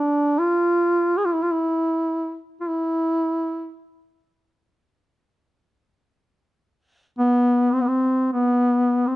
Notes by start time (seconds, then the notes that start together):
Already playing: D4
0.39 F4
1.17 G#4
1.25 F4
1.34 E4
1.43 F4
1.52 E4
2.60 F4
2.68 E4
7.19 B3
7.73 C4
7.81 B3
7.87 C4
8.32 B3
9.07 C4